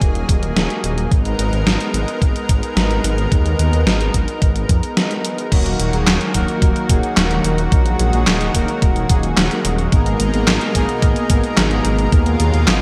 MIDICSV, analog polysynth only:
0, 0, Header, 1, 2, 480
1, 0, Start_track
1, 0, Key_signature, -6, "minor"
1, 0, Tempo, 550459
1, 971, Time_signature, 4, 2, 24, 8
1, 11176, End_track
2, 0, Start_track
2, 0, Title_t, "Analog polysynth"
2, 0, Program_c, 0, 90
2, 4813, Note_on_c, 0, 66, 72
2, 4814, Note_on_c, 0, 54, 77
2, 4814, Note_on_c, 0, 58, 71
2, 4814, Note_on_c, 0, 63, 72
2, 4814, Note_on_c, 0, 70, 85
2, 5143, Note_off_c, 0, 66, 0
2, 5144, Note_off_c, 0, 54, 0
2, 5144, Note_off_c, 0, 58, 0
2, 5144, Note_off_c, 0, 63, 0
2, 5144, Note_off_c, 0, 70, 0
2, 5173, Note_on_c, 0, 54, 83
2, 5173, Note_on_c, 0, 58, 79
2, 5173, Note_on_c, 0, 63, 76
2, 5173, Note_on_c, 0, 66, 77
2, 5173, Note_on_c, 0, 68, 92
2, 5503, Note_off_c, 0, 63, 0
2, 5503, Note_off_c, 0, 66, 0
2, 5503, Note_off_c, 0, 68, 0
2, 5504, Note_off_c, 0, 54, 0
2, 5504, Note_off_c, 0, 58, 0
2, 5532, Note_on_c, 0, 58, 90
2, 5533, Note_on_c, 0, 54, 99
2, 5533, Note_on_c, 0, 63, 89
2, 5533, Note_on_c, 0, 66, 93
2, 5533, Note_on_c, 0, 70, 107
2, 5983, Note_off_c, 0, 54, 0
2, 5983, Note_off_c, 0, 58, 0
2, 5983, Note_off_c, 0, 63, 0
2, 5983, Note_off_c, 0, 66, 0
2, 5983, Note_off_c, 0, 70, 0
2, 6011, Note_on_c, 0, 54, 79
2, 6011, Note_on_c, 0, 58, 74
2, 6011, Note_on_c, 0, 68, 84
2, 6012, Note_on_c, 0, 63, 72
2, 6012, Note_on_c, 0, 66, 69
2, 6342, Note_off_c, 0, 54, 0
2, 6342, Note_off_c, 0, 68, 0
2, 6343, Note_off_c, 0, 58, 0
2, 6343, Note_off_c, 0, 63, 0
2, 6343, Note_off_c, 0, 66, 0
2, 6372, Note_on_c, 0, 54, 79
2, 6372, Note_on_c, 0, 58, 72
2, 6372, Note_on_c, 0, 70, 89
2, 6373, Note_on_c, 0, 63, 76
2, 6373, Note_on_c, 0, 66, 73
2, 6703, Note_off_c, 0, 54, 0
2, 6703, Note_off_c, 0, 58, 0
2, 6703, Note_off_c, 0, 63, 0
2, 6703, Note_off_c, 0, 66, 0
2, 6703, Note_off_c, 0, 70, 0
2, 6731, Note_on_c, 0, 58, 70
2, 6731, Note_on_c, 0, 70, 82
2, 6732, Note_on_c, 0, 54, 76
2, 6732, Note_on_c, 0, 63, 72
2, 6732, Note_on_c, 0, 66, 71
2, 7063, Note_off_c, 0, 54, 0
2, 7063, Note_off_c, 0, 58, 0
2, 7063, Note_off_c, 0, 63, 0
2, 7063, Note_off_c, 0, 66, 0
2, 7063, Note_off_c, 0, 70, 0
2, 7092, Note_on_c, 0, 66, 73
2, 7092, Note_on_c, 0, 68, 95
2, 7093, Note_on_c, 0, 54, 82
2, 7093, Note_on_c, 0, 58, 74
2, 7093, Note_on_c, 0, 63, 73
2, 7423, Note_off_c, 0, 54, 0
2, 7423, Note_off_c, 0, 66, 0
2, 7423, Note_off_c, 0, 68, 0
2, 7424, Note_off_c, 0, 58, 0
2, 7424, Note_off_c, 0, 63, 0
2, 7451, Note_on_c, 0, 58, 90
2, 7452, Note_on_c, 0, 54, 94
2, 7452, Note_on_c, 0, 63, 90
2, 7452, Note_on_c, 0, 66, 93
2, 7452, Note_on_c, 0, 70, 107
2, 7903, Note_off_c, 0, 54, 0
2, 7903, Note_off_c, 0, 58, 0
2, 7903, Note_off_c, 0, 63, 0
2, 7903, Note_off_c, 0, 66, 0
2, 7903, Note_off_c, 0, 70, 0
2, 7932, Note_on_c, 0, 58, 72
2, 7932, Note_on_c, 0, 63, 73
2, 7932, Note_on_c, 0, 68, 90
2, 7933, Note_on_c, 0, 54, 81
2, 7933, Note_on_c, 0, 66, 75
2, 8263, Note_off_c, 0, 54, 0
2, 8263, Note_off_c, 0, 58, 0
2, 8263, Note_off_c, 0, 63, 0
2, 8263, Note_off_c, 0, 66, 0
2, 8263, Note_off_c, 0, 68, 0
2, 8292, Note_on_c, 0, 54, 80
2, 8292, Note_on_c, 0, 58, 74
2, 8292, Note_on_c, 0, 63, 70
2, 8292, Note_on_c, 0, 66, 72
2, 8292, Note_on_c, 0, 70, 89
2, 8623, Note_off_c, 0, 54, 0
2, 8623, Note_off_c, 0, 58, 0
2, 8623, Note_off_c, 0, 63, 0
2, 8623, Note_off_c, 0, 66, 0
2, 8623, Note_off_c, 0, 70, 0
2, 8651, Note_on_c, 0, 70, 87
2, 8652, Note_on_c, 0, 58, 76
2, 8652, Note_on_c, 0, 59, 73
2, 8652, Note_on_c, 0, 63, 71
2, 8652, Note_on_c, 0, 68, 71
2, 8983, Note_off_c, 0, 58, 0
2, 8983, Note_off_c, 0, 59, 0
2, 8983, Note_off_c, 0, 63, 0
2, 8983, Note_off_c, 0, 68, 0
2, 8983, Note_off_c, 0, 70, 0
2, 9011, Note_on_c, 0, 59, 78
2, 9011, Note_on_c, 0, 63, 74
2, 9011, Note_on_c, 0, 68, 77
2, 9011, Note_on_c, 0, 70, 92
2, 9012, Note_on_c, 0, 58, 83
2, 9343, Note_off_c, 0, 58, 0
2, 9343, Note_off_c, 0, 59, 0
2, 9343, Note_off_c, 0, 63, 0
2, 9343, Note_off_c, 0, 68, 0
2, 9343, Note_off_c, 0, 70, 0
2, 9372, Note_on_c, 0, 58, 100
2, 9372, Note_on_c, 0, 59, 90
2, 9372, Note_on_c, 0, 63, 90
2, 9372, Note_on_c, 0, 68, 94
2, 9372, Note_on_c, 0, 70, 108
2, 9823, Note_off_c, 0, 58, 0
2, 9823, Note_off_c, 0, 59, 0
2, 9823, Note_off_c, 0, 63, 0
2, 9823, Note_off_c, 0, 68, 0
2, 9823, Note_off_c, 0, 70, 0
2, 9852, Note_on_c, 0, 63, 74
2, 9853, Note_on_c, 0, 58, 81
2, 9853, Note_on_c, 0, 59, 72
2, 9853, Note_on_c, 0, 68, 76
2, 9853, Note_on_c, 0, 70, 91
2, 10183, Note_off_c, 0, 58, 0
2, 10183, Note_off_c, 0, 59, 0
2, 10183, Note_off_c, 0, 63, 0
2, 10183, Note_off_c, 0, 68, 0
2, 10183, Note_off_c, 0, 70, 0
2, 10212, Note_on_c, 0, 58, 82
2, 10212, Note_on_c, 0, 59, 73
2, 10212, Note_on_c, 0, 63, 72
2, 10212, Note_on_c, 0, 68, 71
2, 10213, Note_on_c, 0, 70, 90
2, 10543, Note_off_c, 0, 58, 0
2, 10543, Note_off_c, 0, 59, 0
2, 10543, Note_off_c, 0, 63, 0
2, 10543, Note_off_c, 0, 68, 0
2, 10544, Note_off_c, 0, 70, 0
2, 10572, Note_on_c, 0, 58, 78
2, 10572, Note_on_c, 0, 59, 71
2, 10572, Note_on_c, 0, 63, 71
2, 10572, Note_on_c, 0, 68, 73
2, 10573, Note_on_c, 0, 70, 88
2, 10903, Note_off_c, 0, 58, 0
2, 10903, Note_off_c, 0, 59, 0
2, 10903, Note_off_c, 0, 63, 0
2, 10903, Note_off_c, 0, 68, 0
2, 10903, Note_off_c, 0, 70, 0
2, 10931, Note_on_c, 0, 59, 77
2, 10932, Note_on_c, 0, 58, 85
2, 10932, Note_on_c, 0, 63, 75
2, 10932, Note_on_c, 0, 68, 76
2, 10932, Note_on_c, 0, 70, 90
2, 11176, Note_off_c, 0, 58, 0
2, 11176, Note_off_c, 0, 59, 0
2, 11176, Note_off_c, 0, 63, 0
2, 11176, Note_off_c, 0, 68, 0
2, 11176, Note_off_c, 0, 70, 0
2, 11176, End_track
0, 0, End_of_file